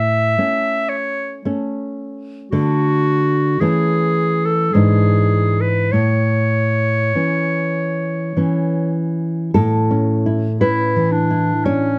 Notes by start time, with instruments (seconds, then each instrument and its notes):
Already playing: nylon-string guitar A2, clarinet E5
0.38 nylon-string guitar A3 C#4
0.89 clarinet C#5
1.45 nylon-string guitar A3 C#4
2.51 nylon-string guitar D3 A3 D4, clarinet F#4
3.60 nylon-string guitar E3 A3 C#4, clarinet G#4
4.46 clarinet A4
4.73 nylon-string guitar G#2 E3 D4, clarinet G#4
5.61 clarinet B4
5.92 nylon-string guitar A2, clarinet C#5
7.15 nylon-string guitar E3 C#4
8.37 nylon-string guitar E3 C#4
9.54 nylon-string guitar A2 A4
9.91 nylon-string guitar C#4
10.26 nylon-string guitar E4
10.61 nylon-string guitar C#4 B4, clarinet E4
10.96 nylon-string guitar E3
11.12 clarinet D4
11.31 nylon-string guitar E4
11.65 clarinet C#4, nylon-string guitar D4 C#5